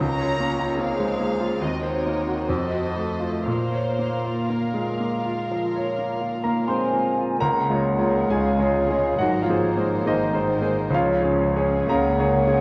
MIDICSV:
0, 0, Header, 1, 9, 480
1, 0, Start_track
1, 0, Key_signature, -5, "minor"
1, 0, Tempo, 802139
1, 1, Time_signature, 4, 2, 24, 8
1, 961, Tempo, 873362
1, 1441, Tempo, 1005025
1, 2881, Tempo, 953895
1, 3840, Key_signature, -5, "major"
1, 3841, Tempo, 900901
1, 4801, Tempo, 862069
1, 5761, Tempo, 952381
1, 6241, Tempo, 881057
1, 6637, End_track
2, 0, Start_track
2, 0, Title_t, "Flute section"
2, 0, Program_c, 0, 73
2, 3357, Note_on_c, 0, 77, 42
2, 3468, Note_on_c, 0, 80, 43
2, 3470, Note_off_c, 0, 77, 0
2, 3827, Note_off_c, 0, 80, 0
2, 3834, Note_on_c, 0, 78, 58
2, 4320, Note_off_c, 0, 78, 0
2, 4326, Note_on_c, 0, 77, 56
2, 4791, Note_on_c, 0, 75, 51
2, 4802, Note_off_c, 0, 77, 0
2, 4916, Note_off_c, 0, 75, 0
2, 4924, Note_on_c, 0, 73, 55
2, 5281, Note_off_c, 0, 73, 0
2, 5282, Note_on_c, 0, 72, 49
2, 5743, Note_on_c, 0, 73, 58
2, 5761, Note_off_c, 0, 72, 0
2, 6123, Note_off_c, 0, 73, 0
2, 6241, Note_on_c, 0, 78, 66
2, 6637, Note_off_c, 0, 78, 0
2, 6637, End_track
3, 0, Start_track
3, 0, Title_t, "Violin section"
3, 0, Program_c, 1, 48
3, 15, Note_on_c, 1, 82, 75
3, 455, Note_off_c, 1, 82, 0
3, 485, Note_on_c, 1, 77, 63
3, 967, Note_off_c, 1, 77, 0
3, 971, Note_on_c, 1, 75, 52
3, 1083, Note_off_c, 1, 75, 0
3, 1084, Note_on_c, 1, 73, 53
3, 1437, Note_off_c, 1, 73, 0
3, 1443, Note_on_c, 1, 72, 51
3, 1908, Note_off_c, 1, 72, 0
3, 1914, Note_on_c, 1, 72, 62
3, 2399, Note_off_c, 1, 72, 0
3, 2410, Note_on_c, 1, 70, 40
3, 3604, Note_off_c, 1, 70, 0
3, 4082, Note_on_c, 1, 73, 34
3, 4555, Note_off_c, 1, 73, 0
3, 4567, Note_on_c, 1, 73, 39
3, 4797, Note_off_c, 1, 73, 0
3, 4805, Note_on_c, 1, 72, 35
3, 5038, Note_off_c, 1, 72, 0
3, 5046, Note_on_c, 1, 72, 44
3, 5511, Note_off_c, 1, 72, 0
3, 5523, Note_on_c, 1, 72, 43
3, 5757, Note_off_c, 1, 72, 0
3, 5997, Note_on_c, 1, 68, 36
3, 6474, Note_off_c, 1, 68, 0
3, 6489, Note_on_c, 1, 68, 47
3, 6637, Note_off_c, 1, 68, 0
3, 6637, End_track
4, 0, Start_track
4, 0, Title_t, "Violin section"
4, 0, Program_c, 2, 48
4, 18, Note_on_c, 2, 70, 37
4, 22, Note_on_c, 2, 73, 42
4, 471, Note_off_c, 2, 70, 0
4, 475, Note_on_c, 2, 72, 40
4, 959, Note_on_c, 2, 70, 38
4, 960, Note_on_c, 2, 75, 34
4, 962, Note_off_c, 2, 72, 0
4, 971, Note_off_c, 2, 73, 0
4, 1440, Note_off_c, 2, 70, 0
4, 1441, Note_off_c, 2, 75, 0
4, 1447, Note_on_c, 2, 69, 35
4, 1447, Note_on_c, 2, 75, 39
4, 1902, Note_on_c, 2, 77, 34
4, 1903, Note_on_c, 2, 70, 35
4, 1904, Note_off_c, 2, 75, 0
4, 1914, Note_off_c, 2, 69, 0
4, 3704, Note_off_c, 2, 70, 0
4, 3724, Note_off_c, 2, 77, 0
4, 4073, Note_on_c, 2, 68, 34
4, 4541, Note_off_c, 2, 68, 0
4, 4547, Note_on_c, 2, 68, 36
4, 4786, Note_on_c, 2, 70, 41
4, 4787, Note_off_c, 2, 68, 0
4, 5013, Note_off_c, 2, 70, 0
4, 5020, Note_on_c, 2, 70, 41
4, 5498, Note_off_c, 2, 70, 0
4, 5518, Note_on_c, 2, 70, 37
4, 5755, Note_off_c, 2, 70, 0
4, 6000, Note_on_c, 2, 61, 35
4, 6475, Note_off_c, 2, 61, 0
4, 6488, Note_on_c, 2, 61, 43
4, 6637, Note_off_c, 2, 61, 0
4, 6637, End_track
5, 0, Start_track
5, 0, Title_t, "Grand piano"
5, 0, Program_c, 3, 0
5, 0, Control_c, 3, 64, 127
5, 4, Note_on_c, 3, 37, 53
5, 12, Control_c, 3, 64, 0
5, 100, Control_c, 3, 64, 127
5, 120, Note_on_c, 3, 73, 41
5, 241, Note_on_c, 3, 58, 37
5, 307, Note_off_c, 3, 73, 0
5, 357, Note_on_c, 3, 65, 38
5, 427, Note_off_c, 3, 58, 0
5, 470, Note_on_c, 3, 58, 41
5, 544, Note_off_c, 3, 65, 0
5, 597, Note_on_c, 3, 56, 39
5, 663, Note_off_c, 3, 58, 0
5, 715, Note_off_c, 3, 56, 0
5, 724, Note_on_c, 3, 58, 32
5, 840, Note_on_c, 3, 65, 37
5, 916, Note_off_c, 3, 58, 0
5, 939, Note_off_c, 3, 37, 0
5, 963, Note_off_c, 3, 65, 0
5, 965, Note_on_c, 3, 39, 40
5, 972, Control_c, 3, 64, 0
5, 1057, Control_c, 3, 64, 127
5, 1083, Note_on_c, 3, 72, 33
5, 1212, Note_on_c, 3, 58, 30
5, 1271, Note_off_c, 3, 72, 0
5, 1327, Note_on_c, 3, 66, 35
5, 1399, Note_off_c, 3, 58, 0
5, 1429, Note_off_c, 3, 39, 0
5, 1445, Note_off_c, 3, 66, 0
5, 1446, Note_on_c, 3, 41, 45
5, 1450, Control_c, 3, 64, 0
5, 1532, Control_c, 3, 64, 127
5, 1549, Note_on_c, 3, 75, 32
5, 1666, Note_on_c, 3, 57, 34
5, 1737, Note_off_c, 3, 75, 0
5, 1784, Note_on_c, 3, 65, 28
5, 1860, Note_off_c, 3, 57, 0
5, 1899, Note_off_c, 3, 41, 0
5, 1909, Note_off_c, 3, 65, 0
5, 1910, Note_on_c, 3, 46, 45
5, 1921, Control_c, 3, 64, 0
5, 2026, Control_c, 3, 64, 127
5, 2034, Note_on_c, 3, 73, 31
5, 2161, Note_on_c, 3, 58, 32
5, 2234, Note_off_c, 3, 73, 0
5, 2286, Note_on_c, 3, 65, 33
5, 2358, Note_off_c, 3, 58, 0
5, 2405, Note_on_c, 3, 58, 32
5, 2480, Note_off_c, 3, 65, 0
5, 2520, Note_on_c, 3, 56, 33
5, 2599, Note_off_c, 3, 58, 0
5, 2643, Note_off_c, 3, 56, 0
5, 2647, Note_on_c, 3, 58, 27
5, 2767, Note_on_c, 3, 65, 31
5, 2834, Note_off_c, 3, 58, 0
5, 2861, Note_off_c, 3, 46, 0
5, 2891, Note_on_c, 3, 53, 29
5, 2954, Note_off_c, 3, 65, 0
5, 3014, Note_on_c, 3, 73, 30
5, 3078, Note_off_c, 3, 53, 0
5, 3129, Note_on_c, 3, 58, 27
5, 3198, Note_off_c, 3, 73, 0
5, 3242, Note_on_c, 3, 65, 31
5, 3315, Note_off_c, 3, 58, 0
5, 3355, Note_on_c, 3, 82, 42
5, 3357, Note_on_c, 3, 70, 33
5, 3362, Note_on_c, 3, 58, 33
5, 3432, Note_off_c, 3, 65, 0
5, 3469, Note_off_c, 3, 82, 0
5, 3470, Note_off_c, 3, 70, 0
5, 3477, Note_on_c, 3, 84, 47
5, 3483, Note_on_c, 3, 56, 25
5, 3484, Note_on_c, 3, 72, 34
5, 3554, Note_off_c, 3, 58, 0
5, 3604, Note_off_c, 3, 56, 0
5, 3606, Note_on_c, 3, 58, 28
5, 3731, Note_on_c, 3, 65, 26
5, 3796, Note_off_c, 3, 58, 0
5, 3819, Note_off_c, 3, 84, 0
5, 3822, Note_off_c, 3, 72, 0
5, 3842, Note_on_c, 3, 82, 69
5, 3844, Note_off_c, 3, 65, 0
5, 3845, Note_on_c, 3, 70, 47
5, 3848, Note_on_c, 3, 37, 50
5, 3850, Control_c, 3, 64, 0
5, 3933, Control_c, 3, 64, 127
5, 3999, Note_on_c, 3, 56, 37
5, 4001, Note_off_c, 3, 37, 0
5, 4001, Note_on_c, 3, 65, 38
5, 4006, Note_on_c, 3, 73, 40
5, 4144, Note_off_c, 3, 56, 0
5, 4146, Note_off_c, 3, 65, 0
5, 4147, Note_off_c, 3, 73, 0
5, 4153, Note_on_c, 3, 56, 38
5, 4155, Note_on_c, 3, 73, 38
5, 4157, Note_on_c, 3, 65, 35
5, 4302, Note_off_c, 3, 56, 0
5, 4303, Note_off_c, 3, 73, 0
5, 4303, Note_off_c, 3, 82, 0
5, 4304, Note_off_c, 3, 65, 0
5, 4304, Note_off_c, 3, 70, 0
5, 4319, Note_on_c, 3, 56, 33
5, 4321, Note_on_c, 3, 80, 52
5, 4324, Note_on_c, 3, 65, 39
5, 4326, Note_on_c, 3, 68, 42
5, 4327, Note_on_c, 3, 73, 42
5, 4328, Note_on_c, 3, 77, 35
5, 4466, Note_off_c, 3, 56, 0
5, 4468, Note_off_c, 3, 65, 0
5, 4468, Note_off_c, 3, 73, 0
5, 4475, Note_on_c, 3, 56, 41
5, 4476, Note_on_c, 3, 65, 40
5, 4476, Note_on_c, 3, 73, 47
5, 4623, Note_off_c, 3, 56, 0
5, 4623, Note_off_c, 3, 65, 0
5, 4624, Note_off_c, 3, 73, 0
5, 4643, Note_on_c, 3, 56, 36
5, 4647, Note_on_c, 3, 65, 35
5, 4649, Note_on_c, 3, 73, 34
5, 4778, Note_off_c, 3, 80, 0
5, 4780, Note_off_c, 3, 68, 0
5, 4781, Note_off_c, 3, 77, 0
5, 4784, Note_off_c, 3, 56, 0
5, 4786, Note_off_c, 3, 65, 0
5, 4787, Note_off_c, 3, 73, 0
5, 4791, Note_on_c, 3, 78, 65
5, 4796, Note_on_c, 3, 44, 49
5, 4804, Note_on_c, 3, 66, 52
5, 4811, Control_c, 3, 64, 0
5, 4907, Note_off_c, 3, 78, 0
5, 4911, Control_c, 3, 64, 127
5, 4914, Note_off_c, 3, 66, 0
5, 4924, Note_on_c, 3, 77, 51
5, 4929, Note_on_c, 3, 65, 40
5, 4953, Note_off_c, 3, 44, 0
5, 4963, Note_on_c, 3, 58, 34
5, 4966, Note_on_c, 3, 72, 37
5, 4967, Note_on_c, 3, 68, 34
5, 5105, Note_off_c, 3, 58, 0
5, 5107, Note_off_c, 3, 68, 0
5, 5107, Note_off_c, 3, 72, 0
5, 5117, Note_on_c, 3, 68, 33
5, 5118, Note_on_c, 3, 58, 35
5, 5121, Note_on_c, 3, 72, 38
5, 5259, Note_off_c, 3, 77, 0
5, 5262, Note_off_c, 3, 58, 0
5, 5262, Note_off_c, 3, 65, 0
5, 5262, Note_off_c, 3, 68, 0
5, 5264, Note_off_c, 3, 72, 0
5, 5276, Note_on_c, 3, 68, 36
5, 5278, Note_on_c, 3, 58, 41
5, 5283, Note_on_c, 3, 72, 41
5, 5285, Note_on_c, 3, 75, 51
5, 5287, Note_on_c, 3, 63, 38
5, 5421, Note_off_c, 3, 58, 0
5, 5421, Note_off_c, 3, 68, 0
5, 5425, Note_off_c, 3, 72, 0
5, 5429, Note_on_c, 3, 58, 37
5, 5433, Note_on_c, 3, 68, 35
5, 5436, Note_on_c, 3, 72, 43
5, 5577, Note_off_c, 3, 58, 0
5, 5579, Note_off_c, 3, 68, 0
5, 5580, Note_off_c, 3, 72, 0
5, 5588, Note_on_c, 3, 58, 39
5, 5589, Note_on_c, 3, 68, 36
5, 5595, Note_on_c, 3, 72, 43
5, 5738, Note_off_c, 3, 58, 0
5, 5739, Note_off_c, 3, 68, 0
5, 5740, Note_off_c, 3, 75, 0
5, 5742, Note_off_c, 3, 63, 0
5, 5742, Note_off_c, 3, 72, 0
5, 5744, Note_on_c, 3, 37, 56
5, 5769, Control_c, 3, 64, 0
5, 5769, Note_on_c, 3, 73, 48
5, 5769, Note_on_c, 3, 77, 69
5, 5772, Note_on_c, 3, 65, 54
5, 5851, Control_c, 3, 64, 127
5, 5903, Note_off_c, 3, 37, 0
5, 5905, Note_off_c, 3, 73, 0
5, 5906, Note_on_c, 3, 61, 41
5, 5910, Note_on_c, 3, 68, 36
5, 5913, Note_on_c, 3, 73, 40
5, 6059, Note_off_c, 3, 61, 0
5, 6061, Note_off_c, 3, 68, 0
5, 6062, Note_off_c, 3, 73, 0
5, 6081, Note_on_c, 3, 68, 41
5, 6082, Note_on_c, 3, 73, 44
5, 6083, Note_on_c, 3, 61, 38
5, 6224, Note_off_c, 3, 68, 0
5, 6224, Note_off_c, 3, 77, 0
5, 6225, Note_off_c, 3, 73, 0
5, 6226, Note_off_c, 3, 61, 0
5, 6226, Note_off_c, 3, 65, 0
5, 6247, Note_on_c, 3, 82, 60
5, 6250, Note_on_c, 3, 61, 40
5, 6251, Note_on_c, 3, 73, 48
5, 6252, Note_on_c, 3, 68, 43
5, 6256, Note_on_c, 3, 77, 45
5, 6262, Note_on_c, 3, 70, 49
5, 6393, Note_off_c, 3, 61, 0
5, 6394, Note_off_c, 3, 68, 0
5, 6394, Note_off_c, 3, 73, 0
5, 6407, Note_on_c, 3, 61, 47
5, 6415, Note_on_c, 3, 73, 50
5, 6418, Note_on_c, 3, 68, 45
5, 6548, Note_off_c, 3, 61, 0
5, 6552, Note_off_c, 3, 73, 0
5, 6554, Note_off_c, 3, 68, 0
5, 6560, Note_on_c, 3, 61, 36
5, 6565, Note_on_c, 3, 68, 38
5, 6568, Note_on_c, 3, 73, 42
5, 6637, Note_off_c, 3, 61, 0
5, 6637, Note_off_c, 3, 68, 0
5, 6637, Note_off_c, 3, 70, 0
5, 6637, Note_off_c, 3, 73, 0
5, 6637, Note_off_c, 3, 77, 0
5, 6637, Note_off_c, 3, 82, 0
5, 6637, End_track
6, 0, Start_track
6, 0, Title_t, "Viola section"
6, 0, Program_c, 4, 48
6, 0, Note_on_c, 4, 65, 43
6, 1, Note_on_c, 4, 61, 47
6, 225, Note_off_c, 4, 61, 0
6, 232, Note_on_c, 4, 61, 42
6, 461, Note_off_c, 4, 65, 0
6, 463, Note_on_c, 4, 68, 44
6, 465, Note_off_c, 4, 61, 0
6, 467, Note_on_c, 4, 60, 39
6, 710, Note_off_c, 4, 60, 0
6, 712, Note_on_c, 4, 58, 42
6, 954, Note_on_c, 4, 66, 41
6, 955, Note_on_c, 4, 60, 42
6, 957, Note_off_c, 4, 68, 0
6, 961, Note_off_c, 4, 58, 0
6, 1434, Note_off_c, 4, 60, 0
6, 1441, Note_on_c, 4, 60, 36
6, 1659, Note_on_c, 4, 57, 35
6, 1663, Note_off_c, 4, 60, 0
6, 1901, Note_off_c, 4, 57, 0
6, 1908, Note_off_c, 4, 66, 0
6, 1910, Note_on_c, 4, 58, 31
6, 1912, Note_on_c, 4, 65, 37
6, 3709, Note_off_c, 4, 65, 0
6, 3728, Note_off_c, 4, 58, 0
6, 4085, Note_on_c, 4, 65, 32
6, 4555, Note_off_c, 4, 65, 0
6, 4561, Note_on_c, 4, 65, 35
6, 4794, Note_off_c, 4, 65, 0
6, 4800, Note_on_c, 4, 63, 42
6, 5027, Note_off_c, 4, 63, 0
6, 5034, Note_on_c, 4, 63, 37
6, 5505, Note_off_c, 4, 63, 0
6, 5520, Note_on_c, 4, 63, 37
6, 5756, Note_off_c, 4, 63, 0
6, 5997, Note_on_c, 4, 61, 33
6, 6473, Note_off_c, 4, 61, 0
6, 6486, Note_on_c, 4, 61, 41
6, 6637, Note_off_c, 4, 61, 0
6, 6637, End_track
7, 0, Start_track
7, 0, Title_t, "French horn section"
7, 0, Program_c, 5, 60
7, 3365, Note_on_c, 5, 58, 49
7, 3474, Note_off_c, 5, 58, 0
7, 3478, Note_on_c, 5, 60, 43
7, 3832, Note_on_c, 5, 58, 55
7, 3840, Note_off_c, 5, 60, 0
7, 4313, Note_on_c, 5, 56, 55
7, 4319, Note_off_c, 5, 58, 0
7, 4787, Note_on_c, 5, 54, 54
7, 4795, Note_off_c, 5, 56, 0
7, 4908, Note_on_c, 5, 53, 54
7, 4914, Note_off_c, 5, 54, 0
7, 5273, Note_off_c, 5, 53, 0
7, 5277, Note_on_c, 5, 51, 59
7, 5754, Note_on_c, 5, 53, 58
7, 5759, Note_off_c, 5, 51, 0
7, 6228, Note_off_c, 5, 53, 0
7, 6234, Note_on_c, 5, 58, 69
7, 6637, Note_off_c, 5, 58, 0
7, 6637, End_track
8, 0, Start_track
8, 0, Title_t, "Cello section"
8, 0, Program_c, 6, 48
8, 3839, Note_on_c, 6, 49, 46
8, 4265, Note_off_c, 6, 49, 0
8, 4322, Note_on_c, 6, 49, 43
8, 4745, Note_off_c, 6, 49, 0
8, 4797, Note_on_c, 6, 44, 55
8, 5222, Note_off_c, 6, 44, 0
8, 5287, Note_on_c, 6, 44, 45
8, 5706, Note_off_c, 6, 44, 0
8, 5764, Note_on_c, 6, 49, 46
8, 6187, Note_off_c, 6, 49, 0
8, 6240, Note_on_c, 6, 49, 44
8, 6637, Note_off_c, 6, 49, 0
8, 6637, End_track
9, 0, Start_track
9, 0, Title_t, "Double bass section"
9, 0, Program_c, 7, 48
9, 3839, Note_on_c, 7, 37, 48
9, 4265, Note_off_c, 7, 37, 0
9, 4323, Note_on_c, 7, 37, 51
9, 4745, Note_off_c, 7, 37, 0
9, 4800, Note_on_c, 7, 32, 45
9, 5223, Note_off_c, 7, 32, 0
9, 5277, Note_on_c, 7, 32, 49
9, 5701, Note_off_c, 7, 32, 0
9, 5760, Note_on_c, 7, 37, 49
9, 6185, Note_off_c, 7, 37, 0
9, 6237, Note_on_c, 7, 37, 55
9, 6637, Note_off_c, 7, 37, 0
9, 6637, End_track
0, 0, End_of_file